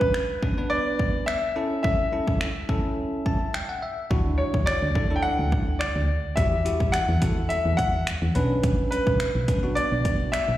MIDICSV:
0, 0, Header, 1, 5, 480
1, 0, Start_track
1, 0, Tempo, 566038
1, 1563, Time_signature, 4, 2, 24, 8
1, 8968, End_track
2, 0, Start_track
2, 0, Title_t, "Grand piano"
2, 0, Program_c, 0, 0
2, 0, Note_on_c, 0, 71, 92
2, 563, Note_off_c, 0, 71, 0
2, 591, Note_on_c, 0, 74, 97
2, 1043, Note_off_c, 0, 74, 0
2, 1071, Note_on_c, 0, 76, 98
2, 1538, Note_off_c, 0, 76, 0
2, 1551, Note_on_c, 0, 76, 92
2, 2963, Note_off_c, 0, 76, 0
2, 3712, Note_on_c, 0, 73, 79
2, 3951, Note_on_c, 0, 74, 91
2, 3965, Note_off_c, 0, 73, 0
2, 4351, Note_off_c, 0, 74, 0
2, 4374, Note_on_c, 0, 79, 76
2, 4431, Note_on_c, 0, 78, 105
2, 4436, Note_off_c, 0, 79, 0
2, 4883, Note_off_c, 0, 78, 0
2, 4911, Note_on_c, 0, 74, 83
2, 5390, Note_on_c, 0, 76, 92
2, 5412, Note_off_c, 0, 74, 0
2, 5842, Note_off_c, 0, 76, 0
2, 5870, Note_on_c, 0, 78, 99
2, 6323, Note_off_c, 0, 78, 0
2, 6350, Note_on_c, 0, 76, 92
2, 6590, Note_on_c, 0, 78, 100
2, 6604, Note_off_c, 0, 76, 0
2, 7042, Note_off_c, 0, 78, 0
2, 7552, Note_on_c, 0, 71, 81
2, 8271, Note_on_c, 0, 74, 97
2, 8299, Note_off_c, 0, 71, 0
2, 8751, Note_on_c, 0, 76, 94
2, 8772, Note_off_c, 0, 74, 0
2, 8968, Note_off_c, 0, 76, 0
2, 8968, End_track
3, 0, Start_track
3, 0, Title_t, "Tine electric piano"
3, 0, Program_c, 1, 4
3, 0, Note_on_c, 1, 61, 82
3, 0, Note_on_c, 1, 62, 75
3, 0, Note_on_c, 1, 71, 89
3, 173, Note_off_c, 1, 61, 0
3, 174, Note_off_c, 1, 62, 0
3, 175, Note_off_c, 1, 71, 0
3, 361, Note_on_c, 1, 61, 69
3, 363, Note_on_c, 1, 62, 62
3, 365, Note_on_c, 1, 71, 74
3, 439, Note_off_c, 1, 61, 0
3, 440, Note_off_c, 1, 62, 0
3, 441, Note_off_c, 1, 71, 0
3, 488, Note_on_c, 1, 59, 70
3, 490, Note_on_c, 1, 62, 68
3, 492, Note_on_c, 1, 71, 85
3, 1060, Note_off_c, 1, 59, 0
3, 1061, Note_off_c, 1, 62, 0
3, 1062, Note_off_c, 1, 71, 0
3, 1321, Note_on_c, 1, 61, 81
3, 1323, Note_on_c, 1, 64, 74
3, 1325, Note_on_c, 1, 69, 89
3, 1712, Note_off_c, 1, 61, 0
3, 1713, Note_off_c, 1, 64, 0
3, 1714, Note_off_c, 1, 69, 0
3, 1802, Note_on_c, 1, 61, 69
3, 1804, Note_on_c, 1, 64, 67
3, 1806, Note_on_c, 1, 69, 82
3, 2094, Note_off_c, 1, 61, 0
3, 2095, Note_off_c, 1, 64, 0
3, 2096, Note_off_c, 1, 69, 0
3, 2281, Note_on_c, 1, 61, 82
3, 2283, Note_on_c, 1, 64, 71
3, 2285, Note_on_c, 1, 69, 91
3, 2763, Note_on_c, 1, 81, 72
3, 2865, Note_off_c, 1, 61, 0
3, 2866, Note_off_c, 1, 64, 0
3, 2867, Note_off_c, 1, 69, 0
3, 2986, Note_off_c, 1, 81, 0
3, 3003, Note_on_c, 1, 79, 68
3, 3121, Note_off_c, 1, 79, 0
3, 3130, Note_on_c, 1, 78, 71
3, 3235, Note_off_c, 1, 78, 0
3, 3243, Note_on_c, 1, 76, 71
3, 3466, Note_off_c, 1, 76, 0
3, 3481, Note_on_c, 1, 62, 82
3, 3483, Note_on_c, 1, 64, 77
3, 3485, Note_on_c, 1, 66, 92
3, 3918, Note_off_c, 1, 62, 0
3, 3919, Note_off_c, 1, 64, 0
3, 3920, Note_off_c, 1, 66, 0
3, 4201, Note_on_c, 1, 62, 69
3, 4203, Note_on_c, 1, 64, 65
3, 4205, Note_on_c, 1, 69, 76
3, 4278, Note_off_c, 1, 62, 0
3, 4279, Note_off_c, 1, 64, 0
3, 4280, Note_off_c, 1, 69, 0
3, 4328, Note_on_c, 1, 62, 73
3, 4330, Note_on_c, 1, 64, 69
3, 4332, Note_on_c, 1, 69, 81
3, 4900, Note_off_c, 1, 62, 0
3, 4901, Note_off_c, 1, 64, 0
3, 4902, Note_off_c, 1, 69, 0
3, 5400, Note_on_c, 1, 64, 74
3, 5402, Note_on_c, 1, 66, 66
3, 5404, Note_on_c, 1, 67, 82
3, 5551, Note_off_c, 1, 64, 0
3, 5552, Note_off_c, 1, 66, 0
3, 5554, Note_off_c, 1, 67, 0
3, 5640, Note_on_c, 1, 64, 72
3, 5642, Note_on_c, 1, 66, 70
3, 5644, Note_on_c, 1, 67, 78
3, 5933, Note_off_c, 1, 64, 0
3, 5934, Note_off_c, 1, 66, 0
3, 5935, Note_off_c, 1, 67, 0
3, 6121, Note_on_c, 1, 64, 66
3, 6123, Note_on_c, 1, 66, 64
3, 6125, Note_on_c, 1, 69, 75
3, 6705, Note_off_c, 1, 64, 0
3, 6706, Note_off_c, 1, 66, 0
3, 6707, Note_off_c, 1, 69, 0
3, 7081, Note_on_c, 1, 61, 80
3, 7083, Note_on_c, 1, 62, 71
3, 7086, Note_on_c, 1, 71, 90
3, 7853, Note_off_c, 1, 61, 0
3, 7854, Note_off_c, 1, 62, 0
3, 7855, Note_off_c, 1, 71, 0
3, 8041, Note_on_c, 1, 61, 70
3, 8043, Note_on_c, 1, 62, 63
3, 8045, Note_on_c, 1, 71, 75
3, 8118, Note_off_c, 1, 61, 0
3, 8120, Note_off_c, 1, 62, 0
3, 8121, Note_off_c, 1, 71, 0
3, 8168, Note_on_c, 1, 59, 77
3, 8170, Note_on_c, 1, 62, 69
3, 8172, Note_on_c, 1, 66, 81
3, 8740, Note_off_c, 1, 59, 0
3, 8741, Note_off_c, 1, 62, 0
3, 8742, Note_off_c, 1, 66, 0
3, 8968, End_track
4, 0, Start_track
4, 0, Title_t, "FM bass"
4, 0, Program_c, 2, 39
4, 3483, Note_on_c, 2, 38, 95
4, 3745, Note_off_c, 2, 38, 0
4, 3849, Note_on_c, 2, 38, 87
4, 4021, Note_off_c, 2, 38, 0
4, 4090, Note_on_c, 2, 38, 91
4, 4433, Note_off_c, 2, 38, 0
4, 4570, Note_on_c, 2, 38, 89
4, 4913, Note_off_c, 2, 38, 0
4, 5050, Note_on_c, 2, 38, 91
4, 5221, Note_off_c, 2, 38, 0
4, 5403, Note_on_c, 2, 40, 94
4, 5665, Note_off_c, 2, 40, 0
4, 5769, Note_on_c, 2, 40, 86
4, 5941, Note_off_c, 2, 40, 0
4, 6010, Note_on_c, 2, 40, 90
4, 6353, Note_off_c, 2, 40, 0
4, 6490, Note_on_c, 2, 40, 84
4, 6833, Note_off_c, 2, 40, 0
4, 6970, Note_on_c, 2, 40, 90
4, 7051, Note_off_c, 2, 40, 0
4, 7083, Note_on_c, 2, 35, 98
4, 7516, Note_off_c, 2, 35, 0
4, 7689, Note_on_c, 2, 35, 84
4, 7861, Note_off_c, 2, 35, 0
4, 7930, Note_on_c, 2, 35, 87
4, 8272, Note_off_c, 2, 35, 0
4, 8410, Note_on_c, 2, 35, 84
4, 8753, Note_off_c, 2, 35, 0
4, 8890, Note_on_c, 2, 35, 90
4, 8968, Note_off_c, 2, 35, 0
4, 8968, End_track
5, 0, Start_track
5, 0, Title_t, "Drums"
5, 9, Note_on_c, 9, 36, 91
5, 94, Note_off_c, 9, 36, 0
5, 122, Note_on_c, 9, 26, 112
5, 206, Note_off_c, 9, 26, 0
5, 361, Note_on_c, 9, 36, 88
5, 446, Note_off_c, 9, 36, 0
5, 843, Note_on_c, 9, 36, 83
5, 928, Note_off_c, 9, 36, 0
5, 1084, Note_on_c, 9, 26, 104
5, 1169, Note_off_c, 9, 26, 0
5, 1563, Note_on_c, 9, 36, 116
5, 1648, Note_off_c, 9, 36, 0
5, 1929, Note_on_c, 9, 36, 86
5, 2014, Note_off_c, 9, 36, 0
5, 2042, Note_on_c, 9, 26, 114
5, 2127, Note_off_c, 9, 26, 0
5, 2281, Note_on_c, 9, 36, 87
5, 2366, Note_off_c, 9, 36, 0
5, 2763, Note_on_c, 9, 36, 83
5, 2848, Note_off_c, 9, 36, 0
5, 3005, Note_on_c, 9, 26, 110
5, 3089, Note_off_c, 9, 26, 0
5, 3483, Note_on_c, 9, 36, 115
5, 3568, Note_off_c, 9, 36, 0
5, 3849, Note_on_c, 9, 36, 91
5, 3934, Note_off_c, 9, 36, 0
5, 3962, Note_on_c, 9, 26, 112
5, 4047, Note_off_c, 9, 26, 0
5, 4201, Note_on_c, 9, 36, 87
5, 4286, Note_off_c, 9, 36, 0
5, 4683, Note_on_c, 9, 36, 87
5, 4768, Note_off_c, 9, 36, 0
5, 4925, Note_on_c, 9, 26, 107
5, 5009, Note_off_c, 9, 26, 0
5, 5403, Note_on_c, 9, 36, 113
5, 5403, Note_on_c, 9, 42, 86
5, 5487, Note_off_c, 9, 42, 0
5, 5488, Note_off_c, 9, 36, 0
5, 5645, Note_on_c, 9, 42, 78
5, 5730, Note_off_c, 9, 42, 0
5, 5769, Note_on_c, 9, 36, 89
5, 5854, Note_off_c, 9, 36, 0
5, 5881, Note_on_c, 9, 42, 91
5, 5882, Note_on_c, 9, 26, 112
5, 5966, Note_off_c, 9, 42, 0
5, 5967, Note_off_c, 9, 26, 0
5, 6120, Note_on_c, 9, 42, 78
5, 6121, Note_on_c, 9, 36, 89
5, 6205, Note_off_c, 9, 36, 0
5, 6205, Note_off_c, 9, 42, 0
5, 6362, Note_on_c, 9, 42, 88
5, 6447, Note_off_c, 9, 42, 0
5, 6602, Note_on_c, 9, 42, 62
5, 6603, Note_on_c, 9, 36, 81
5, 6687, Note_off_c, 9, 42, 0
5, 6688, Note_off_c, 9, 36, 0
5, 6843, Note_on_c, 9, 42, 87
5, 6844, Note_on_c, 9, 26, 106
5, 6928, Note_off_c, 9, 42, 0
5, 6929, Note_off_c, 9, 26, 0
5, 7082, Note_on_c, 9, 42, 79
5, 7167, Note_off_c, 9, 42, 0
5, 7322, Note_on_c, 9, 42, 84
5, 7323, Note_on_c, 9, 36, 120
5, 7407, Note_off_c, 9, 42, 0
5, 7408, Note_off_c, 9, 36, 0
5, 7565, Note_on_c, 9, 42, 76
5, 7650, Note_off_c, 9, 42, 0
5, 7689, Note_on_c, 9, 36, 88
5, 7774, Note_off_c, 9, 36, 0
5, 7800, Note_on_c, 9, 42, 91
5, 7801, Note_on_c, 9, 26, 118
5, 7885, Note_off_c, 9, 42, 0
5, 7886, Note_off_c, 9, 26, 0
5, 8040, Note_on_c, 9, 42, 78
5, 8041, Note_on_c, 9, 36, 89
5, 8125, Note_off_c, 9, 36, 0
5, 8125, Note_off_c, 9, 42, 0
5, 8283, Note_on_c, 9, 42, 87
5, 8367, Note_off_c, 9, 42, 0
5, 8522, Note_on_c, 9, 42, 65
5, 8523, Note_on_c, 9, 36, 86
5, 8607, Note_off_c, 9, 42, 0
5, 8608, Note_off_c, 9, 36, 0
5, 8763, Note_on_c, 9, 42, 86
5, 8764, Note_on_c, 9, 26, 107
5, 8848, Note_off_c, 9, 42, 0
5, 8849, Note_off_c, 9, 26, 0
5, 8968, End_track
0, 0, End_of_file